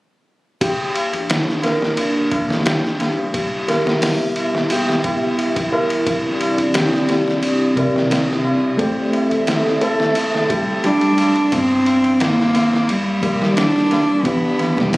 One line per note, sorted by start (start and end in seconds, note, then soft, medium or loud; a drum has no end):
0.61 3.31 A#3 medium
0.61 3.31 D4 medium
0.61 6.03 G4 medium
0.61 0.94 G4 medium
0.61 3.31 D5 medium
0.61 kick loud
0.61 ride medium
0.61 tabla na soft
0.95 ride medium
0.95 tabla na medium
1.13 ride soft
1.13 tabla na soft
1.13 tabla ge medium
1.29 snare loud
1.29 ride medium
1.29 tabla na soft
1.47 snare soft
1.47 tabla na soft
1.62 1.96 A#4 medium
1.62 snare soft
1.62 ride medium
1.62 tabla na medium
1.81 snare soft
1.81 tabla na soft
1.97 ride medium
1.97 tabla na soft
2.15 tabla na soft
2.31 kick medium
2.31 ride medium
2.31 tabla na medium
2.49 snare soft
2.49 tabla na soft
2.49 tabla ge medium
2.66 2.98 G4 medium
2.66 snare loud
2.66 ride medium
2.66 tabla na soft
2.85 snare soft
2.99 snare soft
2.99 ride medium
2.99 tabla na medium
3.17 tabla na soft
3.34 6.04 B3 medium
3.34 11.49 E4 medium
3.34 6.04 E5 medium
3.34 kick loud
3.34 ride medium
3.34 tabla na soft
3.68 4.01 A#4 medium
3.68 snare soft
3.68 ride medium
3.68 tabla na medium
3.86 snare soft
3.86 tabla na soft
3.86 tabla ge medium
4.02 snare loud
4.02 open hi-hat medium
4.02 tabla na soft
4.20 tabla na soft
4.36 ride medium
4.36 tabla na medium
4.53 snare soft
4.53 tabla na soft
4.70 5.03 G4 medium
4.70 ride medium
4.70 tabla na soft
4.88 snare soft
4.88 tabla na soft
5.04 kick medium
5.04 ride medium
5.04 tabla na medium
5.22 tabla na soft
5.38 ride medium
5.38 tabla na soft
5.56 kick medium
5.56 ride medium
5.72 6.05 A#4 medium
5.72 tabla na medium
5.90 ride medium
5.90 tabla na soft
6.06 11.48 C4 medium
6.06 8.77 G4 medium
6.06 8.77 D5 medium
6.06 kick loud
6.06 ride medium
6.06 tabla na soft
6.40 ride medium
6.40 tabla na medium
6.58 ride soft
6.58 tabla na soft
6.58 tabla ge medium
6.74 7.07 G4 medium
6.74 snare loud
6.74 ride medium
6.74 tabla na soft
6.93 snare soft
6.93 tabla na soft
7.09 snare soft
7.09 ride medium
7.09 tabla na medium
7.26 snare soft
7.26 tabla na soft
7.43 ride medium
7.43 tabla na soft
7.61 tabla na soft
7.75 8.75 C3 medium
7.75 8.75 C4 medium
7.75 8.09 A#4 medium
7.75 8.76 D5 medium
7.75 8.77 E5 medium
7.75 kick medium
7.75 ride medium
7.75 tabla na medium
7.94 snare soft
7.94 tabla na soft
7.94 tabla ge medium
8.11 snare loud
8.11 ride medium
8.11 tabla na medium
8.30 snare soft
8.45 tabla na medium
8.63 tabla na soft
8.77 11.49 A3 medium
8.77 9.12 G4 medium
8.77 11.50 A4 medium
8.77 11.51 C5 medium
8.77 11.51 D5 loud
8.77 11.50 E5 medium
8.77 kick loud
8.77 ride medium
8.77 tabla na soft
9.13 ride soft
9.13 tabla na medium
9.31 ride soft
9.31 tabla na soft
9.31 tabla ge medium
9.47 snare medium
9.47 ride medium
9.47 tabla na medium
9.66 snare soft
9.66 tabla na soft
9.81 10.14 A4 medium
9.81 ride medium
9.81 tabla na medium
10.00 snare soft
10.00 tabla na soft
10.15 ride medium
10.15 tabla na soft
10.15 swell medium
10.33 snare soft
10.33 tabla na soft
10.50 10.82 G4 medium
10.50 kick medium
10.50 ride medium
10.50 tabla na medium
10.67 tabla na soft
10.83 11.15 G3 medium
10.83 11.54 D4 medium
10.83 ride medium
10.83 tabla na medium
11.01 ride soft
11.18 ride medium
11.18 tabla na medium
11.36 ride soft
11.36 tabla na soft
11.52 13.23 G1 loud
11.52 12.23 C4 medium
11.52 kick loud
11.52 ride medium
11.52 tabla na soft
11.70 tabla na soft
11.86 ride medium
11.86 tabla na medium
12.03 ride soft
12.03 tabla na soft
12.03 tabla ge medium
12.20 12.91 A#3 medium
12.20 snare loud
12.20 ride medium
12.20 tabla na soft
12.38 snare soft
12.38 tabla na soft
12.54 snare soft
12.54 ride medium
12.54 tabla na medium
12.73 snare soft
12.73 tabla na soft
12.88 13.57 G3 medium
12.88 ride medium
12.88 tabla na soft
13.06 tabla na soft
13.22 14.22 F1 medium
13.22 14.21 G3 medium
13.22 14.21 G4 medium
13.22 14.22 A#4 medium
13.22 kick medium
13.22 ride medium
13.22 tabla na medium
13.26 14.23 D5 medium
13.40 snare soft
13.40 tabla na soft
13.40 tabla ge medium
13.57 14.27 D4 medium
13.57 snare loud
13.57 ride medium
13.57 tabla na soft
13.76 snare soft
13.91 snare soft
13.91 ride medium
13.91 tabla na medium
14.09 tabla na soft
14.23 14.97 E3 medium
14.23 14.97 B3 medium
14.23 14.80 B3 medium
14.23 14.97 G4 medium
14.23 kick loud
14.23 ride medium
14.23 tabla na medium
14.27 14.97 D5 loud
14.44 tabla na soft
14.59 snare soft
14.59 ride medium
14.59 tabla na medium
14.77 14.97 E1 medium
14.77 14.96 G3 medium
14.77 snare medium
14.77 tabla na soft
14.77 tabla ge medium
14.93 14.97 A3 medium
14.93 snare loud
14.93 open hi-hat medium
14.93 tabla na medium